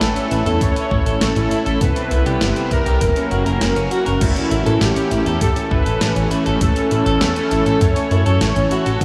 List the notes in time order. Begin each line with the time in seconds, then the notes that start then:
Already playing: A3 C#4 E4
0.01 A1 A3 A4, snare, closed hi-hat
0.16 C#4, closed hi-hat
0.31 A1 E4, closed hi-hat
0.46 E2 A4, closed hi-hat
0.61 A1 A3 C#5, kick, closed hi-hat
0.76 C#4, closed hi-hat
0.91 A1 E4, kick
1.06 A1 A4, closed hi-hat
1.21 A1 A3 A4, snare, closed hi-hat
1.36 A1 C#4, closed hi-hat
1.51 E4, closed hi-hat
1.66 A1 A4, closed hi-hat
1.81 C2 C3 G3 B3 B4, kick, closed hi-hat
1.96 C4, closed hi-hat
2.11 C2 E4, closed hi-hat
2.26 C2 G4, closed hi-hat
2.41 G1 B3, snare, closed hi-hat
2.56 C4, closed hi-hat
2.71 C2 E4 A#4, kick, closed hi-hat
2.86 C2 G4, closed hi-hat
3.01 F#1 F#3 A#3 C#4, kick, closed hi-hat
3.16 C#4, closed hi-hat
3.31 F#1 F#4, closed hi-hat
3.46 F#1 A#4, closed hi-hat
3.61 F#1 A#3, snare, closed hi-hat
3.76 F#1 C#4, closed hi-hat
3.91 F#4, closed hi-hat
4.06 F#1 A#4, closed hi-hat
4.21 A1 E3 A3 C#4 E4, kick, closed hi-hat, crash
4.36 C#4, closed hi-hat
4.51 A1 E4, closed hi-hat
4.66 A2 A4, closed hi-hat
4.81 A1 A3 G4, snare, closed hi-hat
4.96 C#4, closed hi-hat
5.11 A1 E4, closed hi-hat
5.26 E2 A4, closed hi-hat
5.41 A1 A3 A4, kick, closed hi-hat
5.56 C#4, closed hi-hat
5.71 A1 E4 B4, kick
5.86 A1 A4, closed hi-hat
6.01 A1 A3, snare, closed hi-hat
6.16 A1 C#4, closed hi-hat
6.31 E4, closed hi-hat
6.46 A1 A4, closed hi-hat
6.61 A1 A3 A4, kick, closed hi-hat
6.76 C#4, closed hi-hat
6.91 A1 E4 A4, closed hi-hat
7.06 A1 A4, closed hi-hat
7.21 E2 A3, snare, closed hi-hat
7.36 C#4, closed hi-hat
7.51 A1 E4, closed hi-hat
7.66 A1 A4, closed hi-hat
7.81 F#2 A3 C#5, kick, closed hi-hat
7.96 C#4, closed hi-hat
8.11 F#2 E4, closed hi-hat
8.26 F#2 A4, closed hi-hat
8.41 A1 A3, snare, closed hi-hat
8.56 A1 C#4, closed hi-hat
8.71 E4 F#4, closed hi-hat
8.86 A1 A4, closed hi-hat
9.01 G1 G3 B3 D4 E4, kick, closed hi-hat